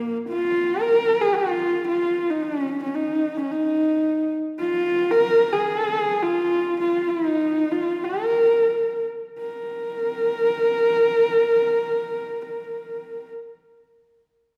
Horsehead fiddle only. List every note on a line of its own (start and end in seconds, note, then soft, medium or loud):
0.00 0.18 A#3 medium
0.29 0.83 F4 loud
0.81 1.23 A#4 loud
1.21 1.36 G#4 loud
1.34 1.87 F4 loud
1.88 2.32 F4 medium
2.30 2.45 D#4 medium
2.43 2.82 C#4 medium
2.83 2.97 C#4 medium
2.95 3.38 D#4 medium
3.37 3.54 C#4 medium
3.52 4.33 D#4 medium
4.60 5.13 F4 loud
5.11 5.54 A#4 loud
5.53 6.24 G#4 loud
6.23 6.80 F4 loud
6.81 7.10 F4 loud
7.09 7.27 E4 medium
7.27 7.73 D#4 medium
7.72 8.05 F4 medium
8.04 9.04 A#4 medium
9.39 13.30 A#4 loud